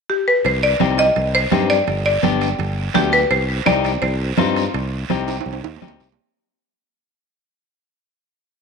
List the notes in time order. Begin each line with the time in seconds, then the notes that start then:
0.10 G4
0.28 B4
0.45 C2 C5, high conga, high timbale, long guiro
0.63 D5
0.80 C2 C4 D#4 G4, high conga, high timbale, short guiro
0.98 D#5, high timbale, short guiro
1.16 C2, high conga, high timbale, long guiro
1.35 C5
1.51 G2 C4 D#4 G4, high conga, high timbale, low timbale, short guiro
1.70 D5, high timbale, short guiro
1.87 G1, high conga, high timbale, long guiro
2.06 D5
2.23 G1 B3 D4 G4, high conga, high timbale, short guiro
2.41 high timbale, short guiro
2.59 G1, high conga, high timbale, long guiro
2.94 D2 B3 D4 G4, high conga, high timbale, low timbale, short guiro
3.12 B4, high timbale, short guiro
3.30 C2 C5, high conga, high timbale, long guiro
3.66 C2 C4 D#4 G4 D5, high conga, high timbale, short guiro
3.84 high timbale, short guiro
4.02 C2 C5, high conga, high timbale, long guiro
4.37 G2 C4 D#4 F4, high conga, high timbale, low timbale, short guiro
4.56 high timbale, short guiro
4.74 C2, high conga, high timbale, long guiro
5.10 C2 C4 D#4 G4, high conga, high timbale, short guiro
5.28 high timbale, short guiro
5.41 high timbale
5.46 C2, high conga, long guiro
5.53 high timbale
5.64 D#2, high timbale
5.76 low timbale
5.82 D2 C4 D#4 G4, high conga, short guiro
5.88 low timbale
6.00 C2, low timbale, short guiro
6.12 low timbale